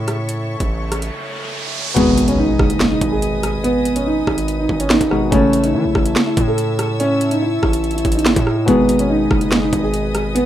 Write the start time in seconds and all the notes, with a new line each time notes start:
Already playing: A2 C#3 A3 E4 A4 C#5 E5 C#6
0.08 cross-stick, closed hi-hat
0.29 closed hi-hat, riser
0.60 A1, kick, closed hi-hat
0.92 cross-stick, closed hi-hat
1.02 closed hi-hat
1.94 G#1 B2 G#3 B3 D#4 G#4 B4 D#5 G#5 D#6, kick, closed hi-hat, impact
2.18 closed hi-hat
2.28 C#4, closed hi-hat
2.38 D#4
2.59 F#1, kick, cross-stick
2.70 closed hi-hat
2.80 finger snap, snare
2.91 D#4
3.01 G#1, kick, closed hi-hat
3.12 G#4
3.22 closed hi-hat
3.43 cross-stick, closed hi-hat
3.64 B3, closed hi-hat
3.85 closed hi-hat
3.96 C#4, closed hi-hat
4.06 D#4
4.27 G#1, kick, cross-stick
4.38 closed hi-hat
4.48 closed hi-hat
4.59 D#4
4.69 G#1, kick
4.80 C#4, closed hi-hat
4.90 D#4, finger snap, snare
5.01 G#1, kick, closed hi-hat
5.10 B2 G#3 D#4 G#4, cross-stick
5.30 A1 C#3 A3 C#4 E4 A4 C#5 E5 A5 E6, kick, closed hi-hat
5.53 closed hi-hat
5.64 D#4, closed hi-hat
5.74 E3 E4
5.85 A1
5.95 A1, kick, cross-stick
6.06 closed hi-hat
6.16 finger snap, snare
6.27 E4
6.37 A2, kick, closed hi-hat
6.48 A4
6.58 closed hi-hat
6.79 cross-stick, closed hi-hat
7.00 C#4, closed hi-hat
7.21 closed hi-hat
7.31 D#4, closed hi-hat
7.42 E4
7.63 A1, kick, cross-stick
7.73 closed hi-hat
7.84 closed hi-hat
7.91 E4, closed hi-hat
7.98 closed hi-hat
8.05 A1, kick, closed hi-hat
8.12 D#4, closed hi-hat
8.19 closed hi-hat
8.25 G#1 E4, finger snap, snare
8.36 A2, kick, closed hi-hat
8.47 cross-stick
8.65 G#1 B2 G#3 B3 D#4 G#4 B4 D#5 G#5 D#6, kick, closed hi-hat
8.89 closed hi-hat
8.99 C#4, closed hi-hat
9.10 D#4
9.31 F#1, kick, cross-stick
9.41 closed hi-hat
9.52 finger snap, snare
9.62 D#4
9.73 G#1, kick, closed hi-hat
9.83 G#4
9.94 closed hi-hat
10.15 cross-stick, closed hi-hat
10.35 B3, closed hi-hat